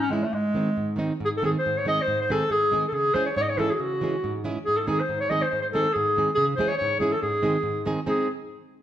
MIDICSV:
0, 0, Header, 1, 3, 480
1, 0, Start_track
1, 0, Tempo, 429492
1, 382, Time_signature, 2, 2, 24, 8
1, 9863, End_track
2, 0, Start_track
2, 0, Title_t, "Clarinet"
2, 0, Program_c, 0, 71
2, 5, Note_on_c, 0, 61, 95
2, 114, Note_on_c, 0, 56, 92
2, 131, Note_off_c, 0, 61, 0
2, 264, Note_on_c, 0, 57, 85
2, 281, Note_off_c, 0, 56, 0
2, 374, Note_on_c, 0, 56, 88
2, 391, Note_off_c, 0, 57, 0
2, 1106, Note_off_c, 0, 56, 0
2, 1397, Note_on_c, 0, 68, 96
2, 1447, Note_off_c, 0, 68, 0
2, 1531, Note_on_c, 0, 69, 85
2, 1569, Note_off_c, 0, 69, 0
2, 1624, Note_on_c, 0, 68, 94
2, 1677, Note_off_c, 0, 68, 0
2, 1774, Note_on_c, 0, 72, 90
2, 1983, Note_on_c, 0, 73, 76
2, 2000, Note_off_c, 0, 72, 0
2, 2084, Note_off_c, 0, 73, 0
2, 2101, Note_on_c, 0, 75, 108
2, 2254, Note_on_c, 0, 72, 94
2, 2271, Note_off_c, 0, 75, 0
2, 2466, Note_off_c, 0, 72, 0
2, 2473, Note_on_c, 0, 72, 87
2, 2586, Note_on_c, 0, 69, 98
2, 2603, Note_off_c, 0, 72, 0
2, 2804, Note_off_c, 0, 69, 0
2, 2811, Note_on_c, 0, 68, 110
2, 3153, Note_off_c, 0, 68, 0
2, 3222, Note_on_c, 0, 69, 76
2, 3287, Note_on_c, 0, 68, 123
2, 3304, Note_off_c, 0, 69, 0
2, 3511, Note_on_c, 0, 72, 99
2, 3528, Note_off_c, 0, 68, 0
2, 3636, Note_off_c, 0, 72, 0
2, 3642, Note_on_c, 0, 73, 72
2, 3748, Note_off_c, 0, 73, 0
2, 3765, Note_on_c, 0, 73, 118
2, 3820, Note_on_c, 0, 75, 87
2, 3837, Note_off_c, 0, 73, 0
2, 3899, Note_on_c, 0, 73, 93
2, 3916, Note_off_c, 0, 75, 0
2, 4002, Note_on_c, 0, 69, 106
2, 4018, Note_off_c, 0, 73, 0
2, 4140, Note_on_c, 0, 68, 85
2, 4156, Note_on_c, 0, 66, 66
2, 4157, Note_off_c, 0, 69, 0
2, 4173, Note_off_c, 0, 68, 0
2, 4183, Note_on_c, 0, 68, 87
2, 4200, Note_off_c, 0, 66, 0
2, 4223, Note_on_c, 0, 66, 104
2, 4239, Note_off_c, 0, 68, 0
2, 4952, Note_off_c, 0, 66, 0
2, 5197, Note_on_c, 0, 68, 112
2, 5334, Note_on_c, 0, 69, 68
2, 5351, Note_off_c, 0, 68, 0
2, 5445, Note_on_c, 0, 68, 102
2, 5462, Note_off_c, 0, 69, 0
2, 5586, Note_on_c, 0, 72, 77
2, 5603, Note_off_c, 0, 68, 0
2, 5806, Note_off_c, 0, 72, 0
2, 5813, Note_on_c, 0, 73, 95
2, 5920, Note_on_c, 0, 75, 120
2, 5937, Note_off_c, 0, 73, 0
2, 6055, Note_on_c, 0, 72, 95
2, 6072, Note_off_c, 0, 75, 0
2, 6085, Note_off_c, 0, 72, 0
2, 6091, Note_on_c, 0, 72, 87
2, 6142, Note_off_c, 0, 72, 0
2, 6149, Note_on_c, 0, 72, 86
2, 6273, Note_off_c, 0, 72, 0
2, 6280, Note_on_c, 0, 72, 78
2, 6331, Note_off_c, 0, 72, 0
2, 6400, Note_on_c, 0, 69, 108
2, 6633, Note_on_c, 0, 68, 103
2, 6650, Note_off_c, 0, 69, 0
2, 7007, Note_off_c, 0, 68, 0
2, 7093, Note_on_c, 0, 68, 111
2, 7206, Note_off_c, 0, 68, 0
2, 7332, Note_on_c, 0, 72, 97
2, 7467, Note_on_c, 0, 73, 93
2, 7484, Note_off_c, 0, 72, 0
2, 7561, Note_off_c, 0, 73, 0
2, 7568, Note_on_c, 0, 73, 97
2, 7803, Note_off_c, 0, 73, 0
2, 7822, Note_on_c, 0, 68, 92
2, 7966, Note_on_c, 0, 69, 89
2, 7983, Note_off_c, 0, 68, 0
2, 8063, Note_off_c, 0, 69, 0
2, 8070, Note_on_c, 0, 68, 93
2, 8742, Note_off_c, 0, 68, 0
2, 9038, Note_on_c, 0, 68, 91
2, 9253, Note_off_c, 0, 68, 0
2, 9863, End_track
3, 0, Start_track
3, 0, Title_t, "Nylon-string guitar"
3, 0, Program_c, 1, 24
3, 0, Note_on_c, 1, 44, 68
3, 113, Note_on_c, 1, 52, 59
3, 122, Note_on_c, 1, 56, 48
3, 133, Note_on_c, 1, 61, 54
3, 143, Note_on_c, 1, 64, 66
3, 265, Note_off_c, 1, 44, 0
3, 275, Note_off_c, 1, 52, 0
3, 278, Note_off_c, 1, 56, 0
3, 285, Note_off_c, 1, 61, 0
3, 290, Note_off_c, 1, 64, 0
3, 369, Note_on_c, 1, 44, 65
3, 605, Note_on_c, 1, 51, 68
3, 614, Note_on_c, 1, 56, 51
3, 628, Note_on_c, 1, 60, 57
3, 633, Note_on_c, 1, 63, 66
3, 746, Note_off_c, 1, 44, 0
3, 763, Note_off_c, 1, 51, 0
3, 768, Note_off_c, 1, 56, 0
3, 774, Note_off_c, 1, 60, 0
3, 777, Note_off_c, 1, 63, 0
3, 860, Note_on_c, 1, 44, 59
3, 1074, Note_on_c, 1, 51, 75
3, 1087, Note_on_c, 1, 56, 60
3, 1099, Note_on_c, 1, 60, 60
3, 1105, Note_on_c, 1, 63, 75
3, 1233, Note_off_c, 1, 44, 0
3, 1239, Note_off_c, 1, 51, 0
3, 1246, Note_off_c, 1, 56, 0
3, 1252, Note_off_c, 1, 60, 0
3, 1255, Note_off_c, 1, 63, 0
3, 1346, Note_on_c, 1, 44, 68
3, 1589, Note_on_c, 1, 51, 78
3, 1592, Note_on_c, 1, 56, 58
3, 1600, Note_on_c, 1, 60, 53
3, 1610, Note_on_c, 1, 63, 69
3, 1610, Note_on_c, 1, 68, 63
3, 1717, Note_off_c, 1, 44, 0
3, 1739, Note_off_c, 1, 51, 0
3, 1740, Note_off_c, 1, 56, 0
3, 1745, Note_off_c, 1, 60, 0
3, 1748, Note_off_c, 1, 63, 0
3, 1749, Note_off_c, 1, 68, 0
3, 1856, Note_on_c, 1, 44, 74
3, 2072, Note_on_c, 1, 51, 69
3, 2082, Note_on_c, 1, 56, 64
3, 2088, Note_on_c, 1, 63, 63
3, 2092, Note_on_c, 1, 60, 51
3, 2100, Note_on_c, 1, 68, 71
3, 2215, Note_off_c, 1, 44, 0
3, 2222, Note_off_c, 1, 51, 0
3, 2227, Note_off_c, 1, 56, 0
3, 2228, Note_off_c, 1, 63, 0
3, 2232, Note_off_c, 1, 60, 0
3, 2235, Note_off_c, 1, 68, 0
3, 2319, Note_on_c, 1, 44, 73
3, 2569, Note_on_c, 1, 51, 69
3, 2571, Note_on_c, 1, 56, 60
3, 2572, Note_on_c, 1, 60, 67
3, 2581, Note_on_c, 1, 63, 67
3, 2588, Note_on_c, 1, 68, 84
3, 2686, Note_off_c, 1, 44, 0
3, 2711, Note_off_c, 1, 56, 0
3, 2712, Note_off_c, 1, 51, 0
3, 2713, Note_off_c, 1, 60, 0
3, 2715, Note_off_c, 1, 63, 0
3, 2721, Note_off_c, 1, 68, 0
3, 2797, Note_on_c, 1, 44, 68
3, 3030, Note_on_c, 1, 51, 63
3, 3036, Note_on_c, 1, 56, 67
3, 3046, Note_on_c, 1, 60, 72
3, 3050, Note_on_c, 1, 63, 62
3, 3055, Note_on_c, 1, 68, 74
3, 3165, Note_off_c, 1, 44, 0
3, 3182, Note_off_c, 1, 51, 0
3, 3184, Note_off_c, 1, 56, 0
3, 3190, Note_off_c, 1, 60, 0
3, 3192, Note_off_c, 1, 63, 0
3, 3195, Note_off_c, 1, 68, 0
3, 3266, Note_on_c, 1, 49, 68
3, 3506, Note_off_c, 1, 49, 0
3, 3510, Note_on_c, 1, 52, 66
3, 3512, Note_on_c, 1, 56, 65
3, 3524, Note_on_c, 1, 61, 60
3, 3526, Note_on_c, 1, 68, 76
3, 3530, Note_on_c, 1, 64, 69
3, 3662, Note_off_c, 1, 56, 0
3, 3663, Note_off_c, 1, 52, 0
3, 3669, Note_off_c, 1, 68, 0
3, 3670, Note_off_c, 1, 61, 0
3, 3672, Note_off_c, 1, 64, 0
3, 3760, Note_on_c, 1, 44, 83
3, 3996, Note_on_c, 1, 52, 64
3, 4002, Note_on_c, 1, 61, 57
3, 4009, Note_on_c, 1, 56, 52
3, 4014, Note_on_c, 1, 64, 61
3, 4017, Note_on_c, 1, 68, 73
3, 4127, Note_off_c, 1, 44, 0
3, 4146, Note_off_c, 1, 52, 0
3, 4148, Note_off_c, 1, 61, 0
3, 4152, Note_off_c, 1, 56, 0
3, 4153, Note_off_c, 1, 64, 0
3, 4156, Note_off_c, 1, 68, 0
3, 4242, Note_on_c, 1, 49, 66
3, 4484, Note_on_c, 1, 52, 69
3, 4494, Note_on_c, 1, 56, 67
3, 4503, Note_on_c, 1, 61, 65
3, 4512, Note_on_c, 1, 64, 53
3, 4512, Note_on_c, 1, 68, 76
3, 4608, Note_off_c, 1, 49, 0
3, 4630, Note_off_c, 1, 52, 0
3, 4634, Note_off_c, 1, 56, 0
3, 4639, Note_off_c, 1, 61, 0
3, 4643, Note_off_c, 1, 64, 0
3, 4644, Note_off_c, 1, 68, 0
3, 4737, Note_on_c, 1, 44, 67
3, 4966, Note_on_c, 1, 52, 71
3, 4966, Note_on_c, 1, 56, 79
3, 4972, Note_on_c, 1, 61, 80
3, 4974, Note_on_c, 1, 64, 76
3, 4978, Note_on_c, 1, 68, 74
3, 5096, Note_off_c, 1, 44, 0
3, 5110, Note_off_c, 1, 52, 0
3, 5110, Note_off_c, 1, 56, 0
3, 5113, Note_off_c, 1, 61, 0
3, 5113, Note_off_c, 1, 64, 0
3, 5116, Note_off_c, 1, 68, 0
3, 5227, Note_on_c, 1, 44, 73
3, 5444, Note_on_c, 1, 51, 72
3, 5449, Note_on_c, 1, 56, 60
3, 5450, Note_on_c, 1, 60, 60
3, 5451, Note_on_c, 1, 63, 66
3, 5464, Note_on_c, 1, 68, 78
3, 5581, Note_off_c, 1, 44, 0
3, 5589, Note_off_c, 1, 51, 0
3, 5590, Note_off_c, 1, 56, 0
3, 5592, Note_off_c, 1, 60, 0
3, 5592, Note_off_c, 1, 63, 0
3, 5599, Note_off_c, 1, 68, 0
3, 5688, Note_on_c, 1, 44, 75
3, 5919, Note_on_c, 1, 51, 58
3, 5924, Note_on_c, 1, 56, 57
3, 5929, Note_on_c, 1, 63, 61
3, 5936, Note_on_c, 1, 60, 56
3, 5942, Note_on_c, 1, 68, 75
3, 6050, Note_off_c, 1, 44, 0
3, 6067, Note_off_c, 1, 51, 0
3, 6067, Note_off_c, 1, 56, 0
3, 6071, Note_off_c, 1, 63, 0
3, 6074, Note_off_c, 1, 60, 0
3, 6077, Note_off_c, 1, 68, 0
3, 6176, Note_on_c, 1, 44, 60
3, 6407, Note_on_c, 1, 51, 75
3, 6413, Note_on_c, 1, 56, 72
3, 6421, Note_on_c, 1, 63, 71
3, 6426, Note_on_c, 1, 60, 53
3, 6431, Note_on_c, 1, 68, 79
3, 6534, Note_off_c, 1, 44, 0
3, 6549, Note_off_c, 1, 51, 0
3, 6553, Note_off_c, 1, 56, 0
3, 6555, Note_off_c, 1, 63, 0
3, 6559, Note_off_c, 1, 60, 0
3, 6560, Note_off_c, 1, 68, 0
3, 6659, Note_on_c, 1, 44, 84
3, 6888, Note_on_c, 1, 51, 68
3, 6906, Note_on_c, 1, 56, 59
3, 6907, Note_on_c, 1, 60, 48
3, 6908, Note_on_c, 1, 63, 59
3, 6919, Note_on_c, 1, 68, 75
3, 7014, Note_off_c, 1, 44, 0
3, 7029, Note_off_c, 1, 51, 0
3, 7038, Note_off_c, 1, 56, 0
3, 7038, Note_off_c, 1, 60, 0
3, 7038, Note_off_c, 1, 63, 0
3, 7044, Note_off_c, 1, 68, 0
3, 7125, Note_on_c, 1, 49, 81
3, 7351, Note_off_c, 1, 49, 0
3, 7355, Note_on_c, 1, 52, 74
3, 7365, Note_on_c, 1, 56, 72
3, 7366, Note_on_c, 1, 61, 70
3, 7378, Note_on_c, 1, 64, 68
3, 7381, Note_on_c, 1, 68, 92
3, 7501, Note_off_c, 1, 52, 0
3, 7506, Note_off_c, 1, 56, 0
3, 7506, Note_off_c, 1, 61, 0
3, 7513, Note_off_c, 1, 64, 0
3, 7513, Note_off_c, 1, 68, 0
3, 7614, Note_on_c, 1, 44, 82
3, 7824, Note_on_c, 1, 56, 59
3, 7825, Note_on_c, 1, 52, 78
3, 7837, Note_on_c, 1, 61, 67
3, 7841, Note_on_c, 1, 64, 55
3, 7849, Note_on_c, 1, 68, 74
3, 7969, Note_off_c, 1, 44, 0
3, 7974, Note_off_c, 1, 56, 0
3, 7975, Note_off_c, 1, 52, 0
3, 7981, Note_off_c, 1, 61, 0
3, 7982, Note_off_c, 1, 64, 0
3, 7987, Note_off_c, 1, 68, 0
3, 8076, Note_on_c, 1, 44, 66
3, 8297, Note_on_c, 1, 51, 68
3, 8303, Note_on_c, 1, 56, 75
3, 8303, Note_on_c, 1, 60, 70
3, 8311, Note_on_c, 1, 63, 56
3, 8322, Note_on_c, 1, 68, 73
3, 8438, Note_off_c, 1, 44, 0
3, 8450, Note_off_c, 1, 51, 0
3, 8451, Note_off_c, 1, 56, 0
3, 8452, Note_off_c, 1, 60, 0
3, 8456, Note_off_c, 1, 63, 0
3, 8462, Note_off_c, 1, 68, 0
3, 8526, Note_on_c, 1, 44, 68
3, 8778, Note_on_c, 1, 51, 82
3, 8783, Note_on_c, 1, 56, 69
3, 8788, Note_on_c, 1, 60, 67
3, 8793, Note_on_c, 1, 63, 66
3, 8796, Note_on_c, 1, 68, 90
3, 8900, Note_off_c, 1, 44, 0
3, 8928, Note_off_c, 1, 51, 0
3, 8930, Note_off_c, 1, 56, 0
3, 8934, Note_off_c, 1, 60, 0
3, 8935, Note_off_c, 1, 63, 0
3, 8937, Note_off_c, 1, 68, 0
3, 9012, Note_on_c, 1, 68, 82
3, 9017, Note_on_c, 1, 60, 79
3, 9025, Note_on_c, 1, 56, 69
3, 9025, Note_on_c, 1, 63, 73
3, 9240, Note_off_c, 1, 68, 0
3, 9243, Note_off_c, 1, 60, 0
3, 9245, Note_off_c, 1, 63, 0
3, 9247, Note_off_c, 1, 56, 0
3, 9863, End_track
0, 0, End_of_file